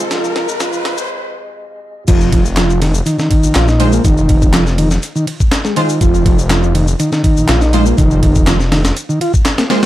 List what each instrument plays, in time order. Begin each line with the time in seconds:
Already playing: tonewheel organ F2 C3 G#3, riser
0.11 transistor combo organ F3, snare, closed hi-hat, shaker
0.24 shaker
0.35 transistor combo organ F3, snare, closed hi-hat
0.49 shaker
0.60 transistor combo organ F3, snare, closed hi-hat, shaker
0.73 shaker
0.85 transistor combo organ F3, snare, closed hi-hat
0.98 shaker
2.08 detuned saw bass F1, transistor combo organ F3, kick, closed hi-hat, crash, shaker
2.21 shaker
2.32 transistor combo organ F3, kick, closed hi-hat, ride
2.45 shaker
2.57 transistor combo organ F3, snare, clap, closed hi-hat, shaker
2.70 shaker
2.81 transistor combo organ D#3, snare, closed hi-hat, ride
2.94 shaker
3.06 transistor combo organ D#3, closed hi-hat, shaker
3.18 transistor combo organ D#3, snare, shaker
3.30 transistor combo organ D#3, kick, closed hi-hat, ride
3.43 detuned saw bass A#1, shaker
3.55 detuned saw bass A#1, transistor combo organ F4, snare, clap, closed hi-hat, shaker
3.68 transistor combo organ D#4, snare, shaker
3.80 synth stab G#3 F4 C5, closed hi-hat, ride
3.93 transistor combo organ A#3, shaker
4.04 detuned saw bass F1, transistor combo organ D#3, kick, closed hi-hat, shaker
4.18 shaker
4.29 kick, closed hi-hat, ride
4.42 kick, shaker
4.53 transistor combo organ F3, snare, clap, closed hi-hat, shaker
4.67 snare, shaker
4.78 transistor combo organ D#3, closed hi-hat, ride
4.91 snare, shaker
5.03 closed hi-hat, shaker
5.16 transistor combo organ D#3, shaker
5.27 closed hi-hat, ride
5.40 kick, shaker
5.52 snare, clap, closed hi-hat, shaker
5.65 transistor combo organ G#3, snare, shaker
5.76 transistor combo organ D#3, synth stab G#3 F4 C5, closed hi-hat, ride
5.90 shaker
6.01 detuned saw bass F1, transistor combo organ F3, kick, closed hi-hat, shaker
6.15 shaker
6.26 transistor combo organ F3, kick, closed hi-hat, ride
6.39 shaker
6.50 transistor combo organ F3, snare, clap, closed hi-hat, shaker
6.63 shaker
6.75 transistor combo organ D#3, closed hi-hat, ride
6.88 shaker
6.99 transistor combo organ D#3, closed hi-hat, shaker
7.12 transistor combo organ D#3, snare, shaker
7.24 transistor combo organ D#3, kick, closed hi-hat, ride
7.37 detuned saw bass A#1, shaker
7.48 detuned saw bass A#1, transistor combo organ F4, snare, clap, closed hi-hat, shaker
7.61 transistor combo organ D#4, snare, shaker
7.73 synth stab G#3 F4 C5, closed hi-hat, ride
7.86 transistor combo organ A#3, shaker
7.97 detuned saw bass F1, transistor combo organ D#3, kick, closed hi-hat, shaker
8.11 shaker
8.23 kick, closed hi-hat, ride
8.36 kick, shaker
8.47 transistor combo organ F3, snare, clap, closed hi-hat, shaker
8.60 snare, shaker
8.71 transistor combo organ D#3, snare, closed hi-hat, ride
8.85 snare, closed hi-hat, shaker
8.97 closed hi-hat, shaker
9.09 transistor combo organ D#3, shaker
9.21 transistor combo organ F4, closed hi-hat, ride
9.34 kick, shaker
9.46 snare, clap, closed hi-hat, shaker
9.58 transistor combo organ A#3, snare, closed hi-hat, shaker
9.70 synth stab G#3 F4 C5, transistor combo organ A#3, snare, closed hi-hat, ride